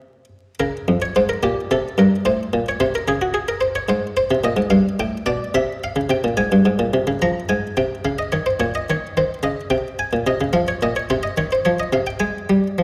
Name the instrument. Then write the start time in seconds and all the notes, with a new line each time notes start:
harpsichord
Already playing: C3 C5
0.60 C#3 A#4
0.88 F2
1.02 C#5
1.16 G#2 C5
1.29 A#4
1.43 A#2 G4
1.71 C3 A4
1.98 G2 A#4
2.25 A2 C5
2.53 A#2
2.69 C#5
2.80 C3 C5
2.95 A#4
3.08 C#3 G#4
3.22 F#4
3.34 G#4
3.48 A#4
3.61 C5
3.75 C#5
3.89 G#2 C5
4.17 C5
4.31 C3
4.44 A#2 D#5
4.57 G#2
4.70 G2 F5
5.00 A2 G5
5.26 B2 D5
5.54 C3 E5
5.84 F5
5.96 C#3
6.10 C3 G5
6.24 A#2
6.37 G#2 G#5
6.52 G2
6.65 G#2
6.79 A#2
6.94 C3
7.07 C#3
7.22 F3 A#5
7.49 G#2 G#5
7.77 C3 G5
8.05 C#3 F5
8.19 D#5
8.32 D#3 C#5
8.46 C5
8.60 A#2 C#5
8.75 D#5
8.90 D#3 C#5
9.17 D#3 C5
9.43 C#3 D#5
9.70 C3 G5
9.99 G#5
10.13 A#2
10.27 C3 D#5
10.41 C#3
10.53 F3 F5
10.68 C#5
10.82 A#2 D#5
10.96 C#5
11.10 C3 C5
11.23 D#5
11.37 D#3 C#5
11.52 C5
11.65 F3 C#5
11.80 D#5
11.93 C3 F5
12.07 G5
12.20 G#3 G#5
12.50 G3
12.78 F3